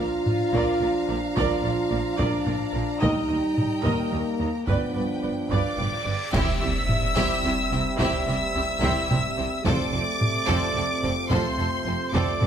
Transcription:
Already playing: F3 D4 F4 F5 A#5
0.26 taiko low-mid
0.54 A#1 A#2 A#4 D5, taiko
0.81 A#1 A#2 A#4 D5
1.08 A#1 A#2 A#4 D5
1.35 A#1 A#2 F4 A#4 D5 F5, taiko
1.63 A#1 A#2 A#4 D5
1.90 A#1 A#2 A#4 D5
2.18 A#1 A#2 D4 A#4 D5, taiko
2.46 A#1 A#2 A#4 D5, taiko low-mid
2.73 A#1 A#2 A#4 D5
3.00 D#2 G3 D#4 A#4 D#5 G5, taiko, reverse cymbal
3.05 D#4
3.28 D#2 A#4 D#5
3.58 taiko low-mid
3.84 D#2 A#3 A#4 D#5, taiko
4.11 D#2 A#4 D#5
4.40 D#2 A#4 D#5
4.67 G1 G2 F3 B3 D4 B4 D5 G5, taiko
4.94 G1 G2 B4 D5
5.22 G1 G2 B4 D5
5.50 G1 G2 B4 D5 F5 D6, taiko
5.77 G1 G2 B4 D5, taiko low-mid
6.05 G1 G2 B4 D5
6.32 C2 C3 G3 C4 E4 G4 E5 E6, concert bass drum, taiko, crash, impact
6.61 C2 C3 C4 E4 G4 E5
6.89 taiko low-mid
7.16 C2 C3 C4 E4 G4 E5, taiko
7.44 C2 C3 C4 E4 G4 E5
7.71 C2 C3 C4 E4 G4 E5
7.98 C2 C3 C4 E4 G4 E5 E6, taiko
8.27 C2 C3 C4 E4 G4 E5
8.55 C2 C3 C4 E4 G4 E5
8.81 C2 C3 C4 E4 G4 E5, taiko
9.09 C2 C3 C4 E4 G4 E5, taiko low-mid
9.37 C2 C3 C4 E4 G4 E5
9.64 F1 F2 C3 A3 C4 F4 A4 C5 D5 D6, taiko
9.92 F1 F2 C4 F4 A4 C5
10.21 taiko low-mid
10.46 F1 F2 C4 F4 A4 C5, taiko
10.75 F1 F2 C4 F4 A4 C5
11.03 F1 F2 C4 F4 A4 C5
11.30 F1 F2 C4 F4 A4 C5 C6, taiko
11.57 F1 F2 C4 F4 A4 C5
11.86 F1 F2 C4 F4 A4 C5
12.13 F1 F2 C4 F4 A4 C5 D5 D6, taiko
12.39 F1 F2 C4 F4 A4 C5, taiko low-mid

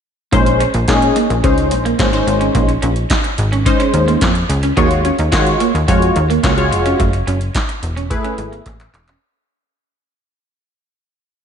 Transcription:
0.32 A#1 G#3 A#3 C#4 D#4 C5, kick, closed hi-hat
0.46 closed hi-hat
0.60 C#4, closed hi-hat
0.74 A#1, muted clean electric guitar stroke, closed hi-hat
0.88 A#2 G#3 C#4 D#4 G#4, kick, snare, clap, closed hi-hat
1.02 closed hi-hat
1.16 A#3, closed hi-hat
1.30 A#1, closed hi-hat
1.43 C#2 G#3 C#4 D#4 C5, kick, closed hi-hat
1.58 closed hi-hat
1.71 A#1, muted clean electric guitar stroke, closed hi-hat
1.85 A#3, closed hi-hat
1.99 G#1 G#3 A#3 C#4 D#4 C5, kick, snare, clap, closed hi-hat
2.13 G#3 C#4 D#4 C5, closed hi-hat
2.27 G#1, muted clean electric guitar stroke, closed hi-hat
2.41 C#4, closed hi-hat
2.55 A#1 A#3, kick, closed hi-hat
2.68 muted clean electric guitar stroke, closed hi-hat
2.82 A#1 C#4, closed hi-hat
2.96 closed hi-hat
3.10 D#4, kick, snare, clap, closed hi-hat
3.24 muted clean electric guitar stroke, closed hi-hat
3.38 G#1, closed hi-hat
3.52 C#4, closed hi-hat
3.65 G#3 C#4 D#4 C5, kick, closed hi-hat
3.80 C#4, closed hi-hat
3.94 D#2, muted clean electric guitar stroke, closed hi-hat
4.08 A#3, closed hi-hat
4.21 F2 A#3, kick, snare, clap, closed hi-hat
4.35 closed hi-hat
4.49 C#2, muted clean electric guitar stroke, closed hi-hat
4.63 C#4, closed hi-hat
4.76 D#2 G#3 A#3 F4 F#4 C#5, kick, closed hi-hat
4.91 closed hi-hat
5.05 C#4, closed hi-hat
5.19 D#2, muted clean electric guitar stroke, closed hi-hat
5.32 D#3 G#3 F4 F#4 C#5, kick, snare, clap, closed hi-hat
5.47 closed hi-hat
5.60 A#3, closed hi-hat
5.75 D#2, closed hi-hat
5.88 F2 G#3 F4 F#4 C#5, kick, closed hi-hat
6.02 closed hi-hat
6.16 D#2, muted clean electric guitar stroke, closed hi-hat
6.30 A#3, closed hi-hat
6.43 C#2 G#3 A#3 F4 F#4 C#5, kick, snare, clap, closed hi-hat
6.57 G#3 F4 F#4 C#5, closed hi-hat
6.72 F1, muted clean electric guitar stroke, closed hi-hat
6.86 C#4, closed hi-hat
7.00 F#1 A3, kick, closed hi-hat
7.13 muted clean electric guitar stroke, closed hi-hat
7.27 F#1 C#4, closed hi-hat
7.41 closed hi-hat
7.55 D#4, kick, snare, clap, closed hi-hat
7.69 muted clean electric guitar stroke, closed hi-hat
7.83 E1, closed hi-hat
7.97 C#4, closed hi-hat
8.10 A3 E4 G#4 B4, kick, closed hi-hat
8.24 C#4, closed hi-hat
8.38 G#1, muted clean electric guitar stroke, closed hi-hat
8.52 A#3, closed hi-hat
8.66 A1 A#3, kick, clap, closed hi-hat
8.80 clap, closed hi-hat
8.94 E1, muted clean electric guitar stroke, clap, closed hi-hat
9.08 C#4, clap, closed hi-hat

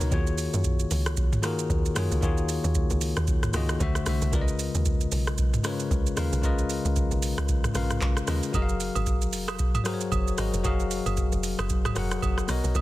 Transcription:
Already playing: B2 B3 D4 D#4 A#4 C#5 D#5 F#5 A#5
0.01 C#2, shaker
0.10 D#2 D#3 A#3 F4 F#4 G#4 C#5, kick, shaker
0.27 shaker
0.38 open hi-hat, shaker
0.54 F#2, shaker
0.64 kick, shaker
0.80 shaker
0.91 C#2, open hi-hat, shaker
1.06 cross-stick, shaker
1.17 kick, shaker
1.33 mid tom, shaker
1.42 D#3 A#3 F4 F#4 G#4 A#4, cross-stick, open hi-hat, shaker
1.59 shaker
1.70 D#2, kick, shaker
1.86 shaker
1.95 F#2 D#3 A#3 F4 F#4 G#4 C#5, cross-stick, open hi-hat, shaker
2.12 C#2, shaker
2.21 D#2 D#3 A#3 F4 F#4 G#4 C#5, kick, shaker
2.38 shaker
2.49 open hi-hat, shaker
2.64 D#2, shaker
2.75 kick, shaker
2.90 C#2, shaker
3.01 open hi-hat, shaker
3.17 D#2, cross-stick, shaker
3.27 kick, shaker
3.43 cross-stick, mid tom, shaker
3.53 C#2 D#3 A#3 F4 F#4 G#4 D#5, cross-stick, open hi-hat, shaker
3.69 cross-stick, shaker
3.79 D2 D3 A3 F#4 C5 E5, kick, shaker
3.95 cross-stick, shaker
4.05 C2 D3 A3 F#4 C5 E5, cross-stick, open hi-hat, shaker
4.22 C2, shaker
4.32 C#2 C#3 G#3 F4 A#4 B4 D5, kick, shaker
4.42 D#5
4.48 shaker
4.59 open hi-hat, shaker
4.75 D#2, shaker
4.85 kick, shaker
5.01 shaker
5.12 B1, open hi-hat, shaker
5.27 cross-stick, shaker
5.38 kick, shaker
5.54 mid tom, shaker
5.63 C#3 G#3 F4 A#4 B4 C#5, cross-stick, open hi-hat, shaker
5.80 shaker
5.91 C#2, kick, shaker
6.07 shaker
6.16 D#2 C#3 G#3 F4 A#4 B4 F5, cross-stick, open hi-hat, shaker
6.33 B1, shaker
6.42 C#2 C#3 G#3 F4 A#4 B4 D#5, kick, shaker
6.59 shaker
6.70 open hi-hat, shaker
6.85 C#2, shaker
6.96 kick, shaker
7.11 B1, shaker
7.22 open hi-hat, shaker
7.38 C#2, cross-stick, shaker
7.49 kick, shaker
7.64 cross-stick, mid tom, shaker
7.73 A#1 C#3 G#3 F4 A#4 B4 F5, cross-stick, open hi-hat, shaker
7.90 cross-stick, mid tom, shaker
8.01 B1, kick, clap, shaker
8.17 cross-stick, shaker
8.26 D#2 C#3 G#3 F4 A#4 B4 D#5, cross-stick, open hi-hat, shaker
8.43 shaker
8.52 F#1 F#3 F#4 G#4 A#4 D#5, kick, high agogo, shaker
8.62 F5
8.69 shaker
8.80 open hi-hat, shaker
8.95 G#1, high agogo, shaker
9.06 kick, shaker
9.22 shaker
9.33 F1, open hi-hat, shaker
9.48 cross-stick, high agogo, shaker
9.59 kick, shaker
9.75 mid tom, high agogo, shaker
9.84 F#3 F#4 G#4 A#4 C5, cross-stick, open hi-hat, shaker
9.94 C#5
10.01 shaker
10.12 F#1, kick, high agogo, shaker
10.28 shaker
10.37 G#1 F#3 F#4 G#4 A#4 D#5, cross-stick, open hi-hat, shaker
10.54 F1, shaker
10.63 F#1 F#3 F#4 G#4 A#4 F5, kick, high agogo, shaker
10.80 shaker
10.91 open hi-hat, shaker
11.06 F#1, high agogo, shaker
11.17 kick, shaker
11.32 F1, shaker
11.43 open hi-hat, shaker
11.59 F#1, cross-stick, high agogo, shaker
11.70 kick, shaker
11.85 cross-stick, mid tom, high agogo, shaker
11.95 F1 F#3 F#4 G#4 A#4 F#5, cross-stick, open hi-hat, shaker
12.11 cross-stick, shaker
12.22 F#1, kick, high agogo, shaker
12.38 cross-stick, shaker
12.47 B1 B3 F#4 A#4 C#5 D#5, cross-stick, open hi-hat, shaker
12.64 B1, shaker
12.75 B1, kick, high agogo, shaker

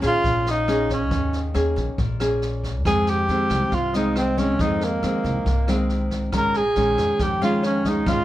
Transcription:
Already playing: D#3 C#5
0.01 A#1 A#3 C#4 G#4 F5, kick, cross-stick, snare
0.07 F4
0.23 A#1 A#2, kick, snare
0.46 D#5, snare
0.51 D#4
0.68 A#3 C#4 G#4, cross-stick, snare
0.89 C#4 C#5, kick, snare
1.11 D#2 D#3, kick, snare
1.33 snare
1.54 D#2 A#3 C#4 G#4, cross-stick, snare
1.76 A#1, kick, snare
1.98 A#1 A#2, kick, snare
2.20 A#3 C#4 G#4, cross-stick, snare
2.42 snare
2.64 kick, snare
2.85 F2 D#3 G#3 C4 G#4 G#5, kick, cross-stick, snare
3.07 G4 G5, snare
3.28 F2 D#3 G#3 C4, snare
3.50 C2, kick, cross-stick, snare
3.72 C2 C3 F4 F5, kick, snare
3.93 D#3 G#3 C4 D#4 D#5, snare
4.15 C4 C5, cross-stick, snare
4.37 D#3 G#3 C4 C#4 C#5, kick, snare
4.59 F2 D#3 G#3 C4 D#4 D#5, kick, snare
4.81 A#3 A#4, snare
5.03 F2 D#3 G#3 C4, cross-stick, snare
5.24 C2, kick, snare
5.46 C2 C3, kick, snare
5.68 D#3 G#3 C4, cross-stick, snare
5.89 snare
6.11 kick, snare
6.32 A#1 A#2 D#3 G#3 C#4 A#4 A#5, kick, cross-stick, snare
6.54 G#4 G#5, snare
6.76 A#1 D#3 G#3 C#4, snare
6.98 F2, kick, cross-stick, snare
7.19 F2 G4 G5, kick, snare
7.41 D#3 G#3 C#4 F4 F5, snare
7.63 C#4 C#5, cross-stick, snare
7.84 D#3 G#3 C#4 D#5, kick, snare
7.89 D#4
8.06 A#1 A#2 D#3 G#3 C#4 F4 F5, kick, snare

